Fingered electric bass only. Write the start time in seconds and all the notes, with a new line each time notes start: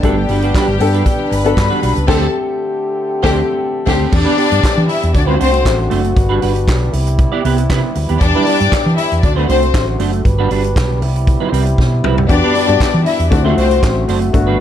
0.03 G1
0.29 G1
0.68 G1
0.80 G2
1.31 G1
1.57 G2
1.83 B1
1.97 C#2
2.08 D2
3.24 D2
3.87 D2
4.13 E2
4.52 G2
4.77 E3
5.04 E2
5.15 D2
5.41 C2
5.66 A1
5.92 F#1
6.17 G1
6.43 G1
6.68 B1
6.93 C2
7.45 C2
7.70 C3
7.96 D2
8.10 D#2
8.21 E2
8.61 G2
8.72 muted fingered electric bass stroke
8.86 E3
9.12 E2
9.24 D2
9.49 C2
9.74 A1
10.00 F#1
10.25 G1
10.51 G1
10.76 B1
11.02 C2
11.52 C2
11.79 B2
12.04 C2
12.30 E2
12.69 G2
12.94 E3
13.19 E2
13.32 D2
13.57 C2
13.83 A1
14.08 F#1
14.34 G1